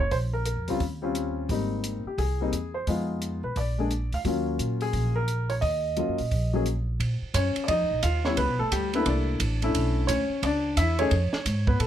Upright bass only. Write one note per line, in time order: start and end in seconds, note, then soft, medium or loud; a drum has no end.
0.11 0.54 A#1 medium
0.56 0.68 F2 soft
0.68 0.79 C#2 medium
0.80 1.46 D#2 medium
1.49 2.01 G#1 medium
2.05 muted upright bass stroke soft
2.18 2.50 C2 medium
2.52 2.84 E2 medium
2.87 3.39 F2 medium
3.43 3.55 B1 medium
3.56 4.08 A#1 medium
4.12 4.24 D2 medium
4.25 4.57 D#2 medium
4.59 4.91 A#2 medium
4.93 5.59 A#1 medium
5.62 6.05 D#2 medium
6.08 6.19 F#2 soft
6.20 6.30 A#2 medium
6.31 6.97 A#1 medium
7.00 7.20 A#2 medium
7.22 muted upright bass stroke soft
7.34 7.54 F#2 medium
7.56 muted upright bass stroke soft
7.68 7.82 F2 medium
7.80 7.90 C#2 medium
7.91 8.02 A#1 medium
8.03 8.36 D#2 medium
8.37 8.48 C#2 medium
8.48 8.59 B1 soft
8.60 8.71 G1 medium
8.71 9.05 D2 medium
9.06 9.39 C2 medium
9.40 9.73 A1 medium
9.74 10.08 B1 medium
10.09 10.29 D2 medium
10.29 muted upright bass stroke soft
10.42 10.76 C#2 medium
10.77 11.10 E2 medium
11.11 11.32 F2 medium
11.33 muted upright bass stroke soft
11.45 11.79 G#2 medium
11.80 11.87 A2 medium